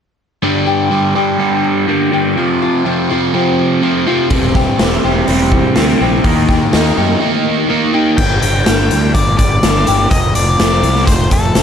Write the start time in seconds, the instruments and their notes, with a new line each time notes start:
0.43 overdriven electric guitar G2 D3 G3, steel-string acoustic guitar G2
0.67 steel-string acoustic guitar G4
0.90 overdriven electric guitar G2 D3 G3, steel-string acoustic guitar D4
1.15 overdriven electric guitar G2 D3 G3, steel-string acoustic guitar G4
1.39 overdriven electric guitar G2 D3 G3, steel-string acoustic guitar D4
1.64 steel-string acoustic guitar G3
1.87 overdriven electric guitar G2 D3 G3, steel-string acoustic guitar A#3
2.12 overdriven electric guitar G2 D3 G3, steel-string acoustic guitar G4
2.36 overdriven electric guitar F2 C3 F3, steel-string acoustic guitar F2
2.62 steel-string acoustic guitar F4
2.85 overdriven electric guitar F2 C3 F3, steel-string acoustic guitar C4
3.09 overdriven electric guitar F2 C3 F3, steel-string acoustic guitar F4
3.34 overdriven electric guitar F2 C3 F3, steel-string acoustic guitar C4
3.59 steel-string acoustic guitar F3
3.82 overdriven electric guitar F2 C3 F3, steel-string acoustic guitar A3
4.06 overdriven electric guitar F2 C3 F3, steel-string acoustic guitar F4
4.30 fingered electric bass E1, overdriven electric guitar C3 G3 C4, steel-string acoustic guitar E3, kick, open hi-hat
4.55 steel-string acoustic guitar G4, kick, snare
4.79 fingered electric bass E1, overdriven electric guitar C3 G3 C4, steel-string acoustic guitar C4, snare, open hi-hat
5.03 fingered electric bass E1, overdriven electric guitar C3 G3 C4, steel-string acoustic guitar G4
5.27 fingered electric bass E1, overdriven electric guitar C3 G3 C4, steel-string acoustic guitar C4, open hi-hat
5.52 steel-string acoustic guitar E3, kick
5.76 fingered electric bass D2, overdriven electric guitar C3 G3 C4, steel-string acoustic guitar G3, snare, open hi-hat
6.01 fingered electric bass A#1, overdriven electric guitar C3 G3 C4, steel-string acoustic guitar G4
6.24 fingered electric bass D#2, overdriven electric guitar D#3 A#3 D#4, steel-string acoustic guitar D#3, kick, open hi-hat
6.49 steel-string acoustic guitar G4, kick, snare
6.72 fingered electric bass D#2, overdriven electric guitar D#3 A#3 D#4, steel-string acoustic guitar D#4, snare, open hi-hat
6.97 fingered electric bass F#2, overdriven electric guitar D#3 A#3 D#4, steel-string acoustic guitar G4
7.21 overdriven electric guitar D#3 A#3 D#4, steel-string acoustic guitar D#4
7.45 steel-string acoustic guitar D#3
7.69 overdriven electric guitar D#3 A#3 D#4, steel-string acoustic guitar A#3
7.93 overdriven electric guitar D#3 A#3 D#4, steel-string acoustic guitar G4
8.17 fingered electric bass G1, steel-string acoustic guitar G2, lead electric guitar G5, kick, crash
8.41 fingered electric bass G1, steel-string acoustic guitar G3, lead electric guitar G5, closed hi-hat
8.66 fingered electric bass G1, steel-string acoustic guitar D4, snare, closed hi-hat
8.90 fingered electric bass D2, steel-string acoustic guitar G3, closed hi-hat
9.15 fingered electric bass G1, steel-string acoustic guitar A#3, lead electric guitar D5, kick, closed hi-hat
9.38 fingered electric bass G1, steel-string acoustic guitar G3, lead electric guitar D5, kick, closed hi-hat
9.63 fingered electric bass G1, steel-string acoustic guitar D4, snare, closed hi-hat
9.87 fingered electric bass G1, steel-string acoustic guitar G4, closed hi-hat
10.11 fingered electric bass F1, steel-string acoustic guitar F2, lead electric guitar D#5, kick, closed hi-hat
10.35 fingered electric bass F1, steel-string acoustic guitar F3, lead electric guitar D5, closed hi-hat
10.60 fingered electric bass F1, steel-string acoustic guitar C4, snare, closed hi-hat
10.83 fingered electric bass C2, steel-string acoustic guitar F3, closed hi-hat
10.96 snare
11.06 fingered electric bass F1, steel-string acoustic guitar A3, lead electric guitar C5, kick, closed hi-hat
11.31 fingered electric bass F1, steel-string acoustic guitar F3, lead electric guitar A4, kick, closed hi-hat
11.55 fingered electric bass F1, steel-string acoustic guitar C4, snare, closed hi-hat